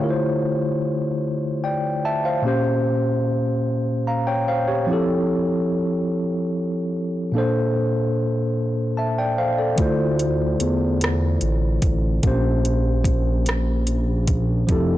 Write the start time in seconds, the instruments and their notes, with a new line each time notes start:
Already playing: tine electric piano G4 C#5
0.00 tine electric piano D3 A3 E4 F4 A#4
0.10 tine electric piano C5
1.64 tine electric piano D5 G5
2.05 tine electric piano E5 A5
2.25 tine electric piano C5 F5
2.42 tine electric piano A#2 A#3 C#4
2.46 tine electric piano G4 C5
4.07 tine electric piano F5 A#5
4.27 tine electric piano C#5 G5
4.48 tine electric piano C5 F5
4.68 tine electric piano G4 C#5
4.87 tine electric piano F3 C4 E4
4.91 tine electric piano G4 A4
7.32 tine electric piano A#2 A#3 D4
7.37 tine electric piano A4 C5
8.97 tine electric piano E5 A5
9.18 tine electric piano D5 G5
9.38 tine electric piano C5 F5
9.58 tine electric piano A4 D5
9.76 analog synth bass D2, tine electric piano D3 A3 E4, kick, closed hi-hat
9.80 tine electric piano F4 C5
10.19 closed hi-hat
10.60 analog synth bass E2, closed hi-hat
11.01 cross-stick, closed hi-hat
11.41 analog synth bass A1, closed hi-hat
11.82 analog synth bass A1, kick, closed hi-hat
12.22 analog synth bass A#1, tine electric piano A#2 A#3 C#4, kick, closed hi-hat
12.26 tine electric piano G4 C5
12.65 closed hi-hat
13.04 kick, closed hi-hat
13.46 cross-stick, closed hi-hat
13.87 closed hi-hat
14.27 kick, closed hi-hat
14.67 analog synth bass F1, tine electric piano F3 C4 E4, kick, closed hi-hat
14.71 tine electric piano G4 A4